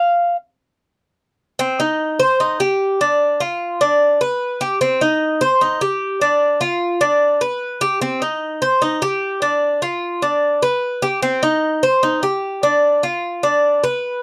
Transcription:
Already playing: F5
1.59 C4
1.80 D#4
2.19 C5
2.40 D#4
2.60 G4
3.01 D4
3.40 F4
3.81 D4
4.21 B4
4.61 G4
4.81 C4
5.01 D#4
5.41 C5
5.61 D#4
5.81 G4
6.21 D4
6.61 F4
7.01 D4
7.41 B4
7.81 G4
8.01 C4
8.22 D#4
8.62 C5
8.82 D#4
9.02 G4
9.42 D4
9.82 F4
10.22 D4
10.62 B4
11.02 G4
11.22 C4
11.43 D#4
11.83 C5
12.03 D#4
12.23 G4
12.63 D4
13.03 F4
13.43 D4
13.84 B4

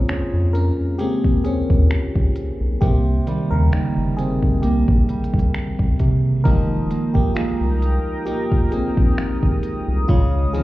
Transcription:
Already playing: C#3 G#3 A#3 C4 F4 G#4
0.09 F2 C#4 G#4 C5, finger snap, closed hi-hat
0.33 F2
0.53 C#4 A#4, closed hi-hat
0.98 C#3 G#3 A#3 C4 G4 G#4, closed hi-hat
1.24 kick
1.44 D#2 C4 C#4 G#4, closed hi-hat
1.70 D#2, kick
1.91 C#2, finger snap, closed hi-hat
2.15 C#2, kick
2.36 closed hi-hat
2.61 B1
2.81 C2 C3 A#3 G4, kick, closed hi-hat
3.27 D#3 G3 A#3 G4, closed hi-hat
3.50 D#2 C#3 A#4
3.73 G1 G3 A#3 D#4, finger snap, closed hi-hat
3.97 G1
4.17 C4 G#4, closed hi-hat
4.42 kick
4.62 C2 A#3 G4, closed hi-hat
4.88 A#1, kick
5.09 G3, closed hi-hat
5.24 closed hi-hat
5.34 C2, kick
5.39 closed hi-hat
5.54 C2, finger snap, closed hi-hat
5.79 C2, kick
5.99 C3, kick, closed hi-hat
6.44 F1 D#3 F3 G#3 A#3 D#4 G4 A#4 G5 A#5 D#6, kick, closed hi-hat
6.91 A#3, closed hi-hat
7.14 G#1 A#3 G4, kick
7.35 C2 G#3 A#3 D#4 F4 G#4, finger snap, closed hi-hat
7.61 C2
7.82 closed hi-hat
8.25 A#3 D#4 G4, closed hi-hat
8.52 kick
8.71 A#1 A#3 C4 G#4, closed hi-hat
8.97 A#1, kick
9.18 G#1, finger snap, closed hi-hat
9.43 G#1, kick
9.63 closed hi-hat
9.88 C2
10.08 C#2 C#3 G#3 F4 D#5 F5, kick, closed hi-hat
10.53 D#3 F3 C4 G#4, closed hi-hat

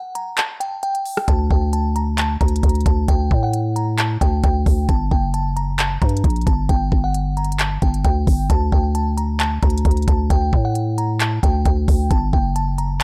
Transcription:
Already playing: F#5
0.15 A#5, closed hi-hat
0.38 A5, clap, closed hi-hat
0.60 G5, closed hi-hat
0.83 G5, closed hi-hat
0.95 closed hi-hat
1.06 open hi-hat
1.17 cross-stick
1.28 D2 A5, kick, closed hi-hat
1.51 D2 G5, kick
1.73 A5, closed hi-hat
1.96 A#5, closed hi-hat
2.18 A5, clap, closed hi-hat
2.41 D2 A#5, kick, closed hi-hat
2.48 closed hi-hat
2.56 closed hi-hat
2.63 D2, kick, closed hi-hat
2.69 closed hi-hat
2.75 closed hi-hat
2.81 closed hi-hat
2.86 D2 A5, kick, closed hi-hat
3.08 D2 G5, kick, closed hi-hat
3.31 A2, kick
3.43 F#5
3.53 closed hi-hat
3.76 A#5, closed hi-hat
3.98 A5, clap, closed hi-hat
4.21 D2 G5, kick, closed hi-hat
4.44 D2 G5, kick, closed hi-hat
4.66 D2, kick, open hi-hat
4.89 G1 A5, kick, closed hi-hat
5.11 F#1 G5, kick
5.34 A5, closed hi-hat
5.56 A#5, closed hi-hat
5.79 A5, clap, closed hi-hat
6.02 G2 A#5, kick, closed hi-hat
6.09 closed hi-hat
6.17 closed hi-hat
6.24 A#1, kick, closed hi-hat
6.30 closed hi-hat
6.36 closed hi-hat
6.41 closed hi-hat
6.47 G1 A5, kick, closed hi-hat
6.69 G1 G5, kick, closed hi-hat
6.92 G1, kick
7.04 F#5
7.14 closed hi-hat
7.37 A#5, closed hi-hat
7.44 closed hi-hat
7.52 closed hi-hat
7.59 A5, clap, closed hi-hat
7.82 G1 G5, kick, closed hi-hat
7.94 closed hi-hat
8.04 D2 G5, kick, closed hi-hat
8.27 G1, kick, open hi-hat
8.50 D2 A5, kick, closed hi-hat
8.72 D2 G5, kick
8.95 A5, closed hi-hat
9.17 A#5, closed hi-hat
9.40 A5, clap, closed hi-hat
9.63 D2 A#5, kick, closed hi-hat
9.70 closed hi-hat
9.78 closed hi-hat
9.85 D2, kick, closed hi-hat
9.91 closed hi-hat
9.97 closed hi-hat
10.02 closed hi-hat
10.08 D2 A5, kick, closed hi-hat
10.30 D2 G5, kick, closed hi-hat
10.53 A2, kick
10.65 F#5
10.75 closed hi-hat
10.98 A#5, closed hi-hat
11.20 A5, clap, closed hi-hat
11.43 D2 G5, kick, closed hi-hat
11.65 D2 G5, kick, closed hi-hat
11.88 D2, kick, open hi-hat
12.11 G1 A5, kick, closed hi-hat
12.33 F#1 G5, kick
12.56 A5, closed hi-hat
12.78 A#5, closed hi-hat

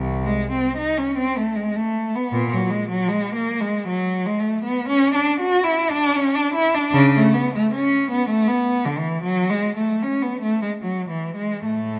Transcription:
Already playing: C2
0.24 G#3
0.51 C4
0.77 D#4
0.97 C#4
1.17 C4
1.37 A3
1.56 G#3
1.75 A3
2.15 B3
2.32 A#2
2.52 F#3
2.70 G#3
2.90 F#3
3.08 G#3
3.35 A#3
3.60 G#3
3.87 F#3
4.26 G#3
4.39 A3
4.63 B3
4.89 C#4
5.15 D4
5.40 F#4
5.64 E4
5.90 D4
6.16 C#4
6.35 D4
6.54 E4
6.74 D4
6.93 C#3
7.15 A3
7.33 B3
7.54 A3
7.74 C#4
8.11 B3
8.30 A3
8.47 B3
8.85 D3
8.98 E3
9.23 F#3
9.50 G#3
9.76 A3
10.02 C#4
10.22 B3
10.41 A3
10.62 G#3
10.82 F#3
11.09 E3
11.35 G#3
11.64 A2 A3

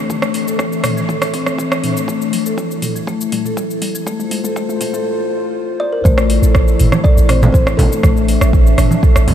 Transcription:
Already playing: A4
0.10 A3 D4 E5, kick, mid tom, cabasa
0.22 cross-stick, cabasa
0.34 open hi-hat, cabasa
0.48 A4, cabasa
0.59 E3, kick, cross-stick, cabasa
0.73 cabasa
0.84 cross-stick, mid tom, open hi-hat, cabasa
0.97 E3, cabasa
1.09 A4, kick, mid tom, cabasa
1.22 cross-stick, open hi-hat, cabasa
1.34 C4, kick, open hi-hat, cabasa
1.46 cross-stick, mid tom, cabasa
1.58 E3, kick, cabasa
1.72 cross-stick, cabasa
1.83 D4, mid tom, open hi-hat, cabasa
1.96 A3, cabasa
2.08 A3 E4, kick, mid tom, cabasa
2.22 cabasa
2.33 open hi-hat, mid tom, cabasa
2.46 A4, cabasa
2.57 E3, kick, mid tom, cabasa
2.71 cabasa
2.82 mid tom, open hi-hat, cabasa
2.96 E3, cabasa
3.07 A3, kick, mid tom, cabasa
3.21 cabasa
3.32 mid tom, open hi-hat, cabasa
3.45 A4, mid tom, cabasa
3.57 E3, kick, mid tom, cabasa
3.71 cabasa
3.82 open hi-hat, mid tom, cabasa
3.95 E3, cabasa
4.06 A2 A3 F4 C5, kick, mid tom, cabasa
4.19 mid tom, cabasa
4.31 open hi-hat, mid tom, cabasa
4.44 A4, mid tom, cabasa
4.56 A3, kick, mid tom, cabasa
4.69 mid tom, cabasa
4.81 mid tom, open hi-hat, cabasa
4.93 A4, mid tom, cabasa
5.80 D5
5.92 A#4
6.04 A1 A3 E4 A4 C5, kick, high conga, cabasa
6.18 cross-stick, cabasa
6.30 open hi-hat, cabasa
6.42 A1 A4, cabasa
6.55 E3, kick, cross-stick, cabasa
6.68 cabasa
6.79 G1, mid tom, open hi-hat, cabasa
6.92 E3, cross-stick, high conga, cabasa
7.04 A4 D5, kick, cabasa
7.17 A1, cabasa
7.29 C4 C5, cross-stick, mid tom, open hi-hat, cabasa
7.42 mid tom, high conga, low conga, cabasa
7.53 A1 E3 C5, kick, cabasa
7.67 cross-stick, cabasa
7.77 A1 D4 A4, open hi-hat, high conga, low conga, cabasa
7.92 A3, cabasa
8.03 A1 A3 D4 A4 E5, kick, cross-stick, high conga, cabasa
8.17 cabasa
8.28 open hi-hat, cabasa
8.41 A1 A4, cross-stick, cabasa
8.53 E3, kick, cabasa
8.67 cabasa
8.78 G1, cross-stick, mid tom, open hi-hat, cabasa
8.91 E3, high conga, cabasa
9.03 A4, kick, cabasa
9.16 A1, cross-stick, cabasa
9.27 C4, kick, open hi-hat, high conga, low conga, cabasa

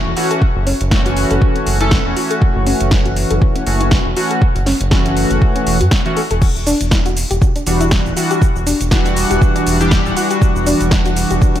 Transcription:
Already playing: E3 A3 C#4 F#4
0.06 E1
0.17 E3 A3 C#4 F#4, open hi-hat
0.31 A4, closed hi-hat
0.42 kick
0.56 F#1
0.66 C#4, open hi-hat
0.81 F#1, closed hi-hat
0.91 E3 A3 C#4 E4 F#4, kick, snare
1.06 F#4, closed hi-hat
1.17 open hi-hat
1.31 F#1 A4, closed hi-hat
1.42 kick
1.56 C#4, closed hi-hat
1.67 F#1, open hi-hat
1.81 E3 A3 C#4 E4 A4, closed hi-hat
1.91 kick, snare
2.05 E1 E3 A3 C#4 F#4
2.16 F#4, open hi-hat
2.30 A4, closed hi-hat
2.42 kick
2.56 F#1
2.66 C#4, open hi-hat
2.81 F#1, closed hi-hat
2.91 E4, kick, snare
3.05 F#4, closed hi-hat
3.16 open hi-hat
3.31 F#1 A4, closed hi-hat
3.42 kick
3.56 C#4, closed hi-hat
3.66 F#1 E3 A3 C#4 F#4, open hi-hat
3.81 E4, closed hi-hat
3.91 kick, snare
4.06 E1
4.16 E3 A3 C#4 F#4, open hi-hat
4.31 A4, closed hi-hat
4.42 kick
4.56 F#1, closed hi-hat
4.66 C#4, snare, open hi-hat
4.81 F#1, closed hi-hat
4.91 E3 A3 C#4 E4 F#4, kick, snare
5.06 F#4, closed hi-hat
5.17 open hi-hat
5.31 F#1 A4, closed hi-hat
5.42 kick
5.56 C#4, closed hi-hat
5.67 E1, open hi-hat
5.81 F#2 F#4, closed hi-hat
5.91 kick, snare
6.06 E3 A3 C#4 F#4, closed hi-hat
6.17 A4, open hi-hat
6.31 E1 A4, closed hi-hat
6.42 kick, crash, cabasa
6.56 E1, cabasa
6.67 D4, open hi-hat, cabasa
6.81 E1, closed hi-hat, cabasa
6.91 E4, kick, snare, cabasa
7.06 F#4, closed hi-hat, cabasa
7.17 open hi-hat, cabasa
7.31 E1 G4, closed hi-hat, cabasa
7.42 kick, cabasa
7.56 D4, closed hi-hat, cabasa
7.67 E1 E3 G3 D4 F#4, open hi-hat, cabasa
7.81 E4, closed hi-hat, cabasa
7.91 kick, snare, cabasa
8.06 D1, cabasa
8.16 E3 G3 D4 F#4, open hi-hat, cabasa
8.31 G4, closed hi-hat, cabasa
8.42 kick, cabasa
8.56 E1, cabasa
8.67 D4, open hi-hat, cabasa
8.81 E1, closed hi-hat, cabasa
8.91 E3 G3 D4 E4 F#4, kick, snare, cabasa
9.06 F#4, closed hi-hat, cabasa
9.17 open hi-hat, cabasa
9.31 E1 G4, closed hi-hat, cabasa
9.42 kick, cabasa
9.55 D4, closed hi-hat, cabasa
9.67 E1, open hi-hat, cabasa
9.80 E3 G3 D4 E4 G4, closed hi-hat, cabasa
9.91 kick, snare, cabasa
10.05 D1 E3 G3 D4 F#4, cabasa
10.17 F#4, open hi-hat, cabasa
10.31 G4, closed hi-hat, cabasa
10.42 kick, cabasa
10.56 E1, cabasa
10.66 D4, open hi-hat, cabasa
10.81 E1, closed hi-hat, cabasa
10.91 E4, kick, snare, cabasa
11.06 F#4, closed hi-hat, cabasa
11.16 open hi-hat, cabasa
11.31 E1 G4, closed hi-hat, cabasa
11.42 kick, cabasa
11.56 D4, closed hi-hat, cabasa

